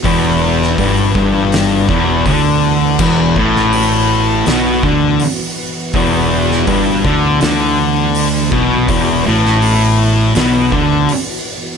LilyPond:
<<
  \new Staff \with { instrumentName = "String machine" } { \time 4/4 \key e \minor \tempo 4 = 82 <e b fis'>1~ | <e b fis'>1~ | <e b fis'>1~ | <e b fis'>1 | }
  \new Staff \with { instrumentName = "Distorted electric guitar" } { \clef bass \time 4/4 \key e \minor e,4 g,8 g,4 e,8 d4 | e,8 a,4. b,8 d8 r4 | e,4 g,8 d8 d4. b,8 | e,8 a,4. b,8 d8 r4 | }
  \new Staff \with { instrumentName = "Distorted electric guitar" } { \clef bass \time 4/4 \key e \minor e,4 g,8 g,4 e,8 d4 | e,8 a,4. b,8 d8 r4 | e,4 g,8 d8 d4. b,8 | e,8 a,4. b,8 d8 r4 | }
  \new Staff \with { instrumentName = "Fingered electric bass" } { \clef bass \time 4/4 \key e \minor e,,4 g,,8 g,,4 e,,8 d,4 | e,,8 a,,4. b,,8 d,8 r4 | e,,4 g,,8 d,8 d,4. b,,8 | e,,8 a,,4. b,,8 d,8 r4 | }
  \new DrumStaff \with { instrumentName = "Drums" } \drummode { \time 4/4 <hho bd>8. sn16 <hho bd>8 bd8 <hho sn>8 bd8 <hho bd>4 | <cymc bd>8 bd16 sn16 hho4 <hho sn>8 bd8 hho4 | <hho bd>8. sn16 <hho bd>8 bd8 <hho sn>4 hho8 bd8 | <hho bd>8. sn16 hho4 <hho sn>8 bd8 hho4 | }
>>